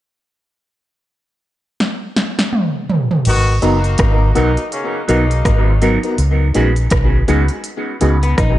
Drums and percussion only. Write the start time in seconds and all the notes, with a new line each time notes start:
1.80 snare
2.16 snare
2.39 snare
2.53 mid tom
2.90 floor tom
3.11 floor tom
3.25 crash
3.62 closed hi-hat
3.84 closed hi-hat
3.98 kick, cross-stick, closed hi-hat
4.35 closed hi-hat
4.57 closed hi-hat
4.72 closed hi-hat
5.09 closed hi-hat
5.31 closed hi-hat
5.45 kick, cross-stick, closed hi-hat
5.82 closed hi-hat
6.03 closed hi-hat
6.18 closed hi-hat
6.55 closed hi-hat
6.76 closed hi-hat
6.90 kick, cross-stick, closed hi-hat
7.28 closed hi-hat
7.48 closed hi-hat
7.64 closed hi-hat
8.01 closed hi-hat
8.23 closed hi-hat
8.38 kick, cross-stick, closed hi-hat